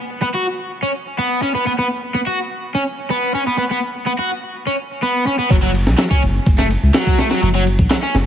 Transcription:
0.22 0.27 B3 medium
0.35 0.46 F#4 medium
0.83 0.91 C#4 medium
1.18 1.41 B3 medium
1.42 1.51 C#4 medium
1.55 1.65 B3 medium
1.66 1.71 B3 medium
1.79 1.86 B3 medium
2.15 2.19 B3 medium
2.27 2.38 F#4 medium
2.75 2.83 C#4 medium
3.10 3.33 B3 loud
3.35 3.43 C#4 medium
3.47 3.57 B3 medium
3.59 3.63 B3 medium
3.71 3.79 B3 medium
4.07 4.12 B3 medium
4.19 4.30 F#4 medium
4.67 4.75 C#4 medium
5.03 5.25 B3 medium
5.27 5.35 C#4 medium
5.39 5.49 B3 medium
5.50 5.88 F#1 loud
5.50 5.55 F#3 loud
5.50 kick loud
5.50 crash medium
5.50 ride medium
5.63 5.71 F#3 loud
5.63 ride soft
5.75 ride medium
5.87 5.95 B1 medium
5.87 snare soft
5.98 6.03 F#3 loud
5.98 snare loud
5.98 ride medium
6.11 6.22 C#4 medium
6.11 kick loud
6.22 6.39 F#1 medium
6.22 ride medium
6.46 6.76 F#1 loud
6.46 kick loud
6.46 ride medium
6.59 6.67 A3 medium
6.59 snare soft
6.70 ride medium
6.83 6.91 C#2 medium
6.94 7.17 F#3 loud
6.94 snare loud
6.94 ride medium
7.07 kick medium
7.19 7.27 A3 medium
7.19 snare medium
7.19 ride medium
7.31 7.41 F#3 medium
7.31 snare soft
7.42 7.80 F#1 loud
7.42 7.47 F#3 loud
7.42 ride medium
7.55 7.63 F#3 loud
7.67 ride medium
7.79 7.87 B1 medium
7.79 kick loud
7.90 7.95 F#3 loud
7.90 snare loud
7.90 open hi-hat medium
8.03 8.14 C#4 medium
8.14 8.26 F#1 medium
8.14 snare medium
8.14 ride medium

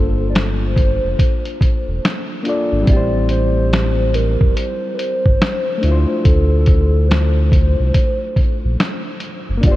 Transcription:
0.00 1.00 G1 medium
0.00 2.38 A#3 medium
0.00 2.40 D4 medium
0.00 2.41 F4 medium
0.00 0.29 A4 medium
0.00 2.43 A4 medium
0.00 2.45 C5 medium
0.30 0.36 D5 medium
0.35 2.03 C5 medium
0.35 finger snap medium
0.35 snare loud
0.35 closed hi-hat medium
0.76 kick medium
0.76 closed hi-hat medium
1.04 1.16 F1 medium
1.19 kick medium
1.19 closed hi-hat medium
1.45 closed hi-hat soft
1.61 kick medium
1.61 closed hi-hat medium
1.88 2.00 E1 medium
2.05 finger snap medium
2.05 snare loud
2.05 closed hi-hat medium
2.43 2.86 A#3 medium
2.43 2.87 D4 medium
2.43 2.88 F4 medium
2.43 closed hi-hat medium
2.48 2.89 A4 soft
2.48 2.89 D5 medium
2.72 2.85 G#1 medium
2.82 5.77 G3 medium
2.82 5.78 C4 medium
2.87 4.38 A1 loud
2.87 5.80 E4 medium
2.87 3.27 D5 loud
2.87 kick loud
2.87 closed hi-hat medium
2.93 5.82 G4 medium
2.93 5.84 C5 medium
3.29 4.16 C5 loud
3.29 closed hi-hat medium
3.73 finger snap medium
3.73 snare medium
3.73 closed hi-hat medium
4.14 4.57 A#4 loud
4.14 closed hi-hat medium
4.41 4.54 F1 medium
4.41 kick medium
4.56 4.93 C5 loud
4.56 closed hi-hat medium
4.95 4.99 B4 medium
4.95 6.23 C5 loud
4.99 closed hi-hat medium
5.26 5.38 G1 medium
5.26 kick medium
5.42 finger snap medium
5.42 snare loud
5.42 closed hi-hat medium
5.78 9.14 A3 medium
5.78 9.16 D4 medium
5.83 6.06 D2 loud
5.83 9.18 E4 medium
5.83 closed hi-hat medium
5.88 9.20 F4 medium
5.88 9.21 C5 medium
6.24 7.75 D2 medium
6.24 7.10 A4 loud
6.24 kick loud
6.24 closed hi-hat medium
6.66 kick medium
6.66 closed hi-hat medium
7.09 8.78 C5 medium
7.09 finger snap medium
7.09 snare medium
7.09 closed hi-hat medium
7.52 kick medium
7.52 closed hi-hat medium
7.80 7.92 C2 medium
7.95 kick medium
7.95 closed hi-hat medium
8.36 kick medium
8.36 closed hi-hat medium
8.65 8.77 A#1 medium
8.80 finger snap medium
8.80 snare loud
8.80 closed hi-hat medium
9.20 closed hi-hat medium
9.49 9.61 F#1 medium
9.57 9.76 A#3 medium
9.57 9.76 D4 medium
9.63 9.76 G1 loud
9.63 9.76 F4 medium
9.63 9.76 D5 loud
9.63 kick loud
9.63 closed hi-hat medium
9.68 9.76 G4 medium
9.68 9.76 C5 medium

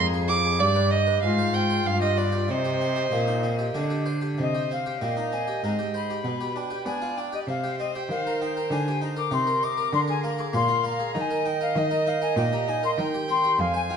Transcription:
0.00 0.56 F2 medium
0.00 0.62 F2 medium
0.00 0.62 G#4 medium
0.14 0.30 G#4 medium
0.28 0.45 F4 medium
0.28 0.61 D6 loud
0.44 0.60 G#4 medium
0.59 1.18 G2 medium
0.59 1.22 G2 medium
0.59 1.23 G4 medium
0.59 0.92 D5 loud
0.76 0.92 B4 medium
0.90 1.21 D#5 loud
1.07 1.23 B4 medium
1.22 1.84 G#2 medium
1.22 1.82 G#2 medium
1.22 2.48 F4 medium
1.22 1.56 F5 loud
1.38 1.55 C5 medium
1.53 1.70 C4 medium
1.53 1.88 G5 loud
1.70 1.86 C5 medium
1.86 2.45 G2 medium
1.86 2.51 G2 medium
1.86 2.01 F5 loud
2.02 2.18 G4 medium
2.02 2.19 D#5 medium
2.17 2.34 B3 medium
2.17 2.52 D5 medium
2.32 2.49 G4 soft
2.48 3.08 C3 medium
2.48 3.12 C3 medium
2.48 3.76 C5 medium
2.48 4.05 D#5 medium
2.65 2.82 G4 medium
2.81 2.98 C4 soft
2.96 3.13 G4 soft
3.12 3.72 A#2 medium
3.12 3.75 A#2 medium
3.12 3.29 C4 medium
3.27 3.45 D#4 soft
3.43 3.60 C4 medium
3.59 3.76 G4 soft
3.74 4.35 D3 medium
3.74 4.38 D3 medium
3.74 3.92 C4 medium
3.90 4.08 G4 soft
4.06 4.23 C5 medium
4.21 4.38 G4 soft
4.38 4.97 C3 soft
4.38 4.98 C3 medium
4.38 4.98 C5 medium
4.38 4.69 D#5 medium
4.55 4.71 G4 soft
4.71 4.87 C4 soft
4.71 5.04 F5 medium
4.86 5.02 G4 soft
5.01 5.59 A#2 soft
5.01 5.59 A#2 medium
5.01 5.18 C4 soft
5.01 6.22 D#5 medium
5.01 5.17 G5 medium
5.17 5.33 D#4 soft
5.17 5.34 A#5 medium
5.32 5.48 C4 soft
5.32 5.63 G#5 medium
5.48 5.64 G4 soft
5.63 6.20 G#2 medium
5.63 6.21 G#2 soft
5.63 5.79 C4 soft
5.63 5.70 A#5 medium
5.79 5.95 G4 soft
5.94 6.10 C5 soft
5.94 6.58 B5 medium
6.10 6.25 G4 soft
6.24 6.82 B2 medium
6.24 6.82 B2 soft
6.24 6.87 B4 medium
6.41 6.56 G4 soft
6.56 6.72 D4 soft
6.56 6.85 G5 medium
6.70 6.87 G4 soft
6.85 7.44 B3 medium
6.85 7.44 B3 soft
6.85 7.02 D4 soft
6.85 7.48 D5 medium
6.85 7.18 G#5 medium
7.02 7.18 F4 soft
7.17 7.34 D4 soft
7.17 7.32 G5 medium
7.33 7.48 G4 soft
7.33 7.39 D#5 medium
7.47 8.06 C3 medium
7.47 8.06 C3 soft
7.47 9.31 C5 medium
7.47 7.78 F5 medium
7.64 7.80 G4 soft
7.78 7.96 C4 soft
7.78 7.94 D#5 medium
7.95 8.10 G4 soft
7.95 8.01 G5 medium
8.09 8.67 D#3 medium
8.09 8.68 D#3 soft
8.09 8.42 F5 medium
8.27 8.42 A#4 soft
8.41 8.57 D#4 soft
8.41 8.73 G5 medium
8.57 8.72 A#4 soft
8.71 9.28 D3 medium
8.71 8.87 D#4 soft
8.71 9.02 G#5 medium
8.88 9.03 G4 soft
9.02 9.17 D#4 soft
9.02 9.08 A#5 medium
9.16 9.33 A#4 soft
9.16 9.34 D6 medium
9.31 9.89 C3 soft
9.31 9.89 C3 medium
9.31 9.48 D#4 soft
9.31 10.56 A#4 medium
9.31 9.65 C6 medium
9.47 9.63 A#4 soft
9.63 9.79 D#5 soft
9.63 9.93 D6 medium
9.78 9.93 A#4 soft
9.93 10.50 D3 medium
9.93 10.00 C6 medium
10.08 10.24 G#4 soft
10.08 10.23 G#5 medium
10.23 10.40 A#3 soft
10.23 10.41 A#5 medium
10.38 10.55 G#4 soft
10.38 10.53 D6 medium
10.53 11.11 A#2 medium
10.53 10.70 A#3 soft
10.53 11.15 F5 medium
10.53 10.86 C6 medium
10.68 10.85 F4 soft
10.84 11.00 A#3 soft
10.84 11.16 A#5 medium
10.99 11.15 G#4 soft
11.15 11.72 D#3 medium
11.15 12.99 D#5 medium
11.15 11.21 A#5 medium
11.20 11.47 G#5 medium
11.31 11.46 A#4 soft
11.45 11.61 D#4 soft
11.45 11.61 G5 medium
11.61 11.76 A#4 soft
11.61 11.78 F5 medium
11.76 12.33 D#3 medium
11.76 12.08 D#5 medium
11.91 12.07 A#4 medium
12.07 12.22 D#4 soft
12.07 12.23 F5 medium
12.22 12.38 A#4 soft
12.22 12.36 G#5 medium
12.36 12.94 A#2 medium
12.36 12.94 A#2 soft
12.36 12.53 D#4 soft
12.36 12.43 G5 medium
12.53 12.68 G4 soft
12.53 12.70 A#5 medium
12.68 12.84 D#4 soft
12.68 12.83 G#5 medium
12.83 12.98 A#4 soft
12.83 12.90 C6 medium
12.97 13.55 D#3 medium
12.97 13.62 G5 medium
12.97 13.05 A#5 medium
13.14 13.30 G4 soft
13.28 13.44 C4 soft
13.28 13.61 C6 medium
13.44 13.59 G4 soft
13.59 13.97 F2 soft
13.59 13.97 F2 medium
13.59 13.74 F5 medium
13.59 13.97 G#5 medium
13.74 13.90 C5 soft
13.74 13.81 G#5 medium
13.90 13.97 F4 soft
13.90 13.97 G5 medium

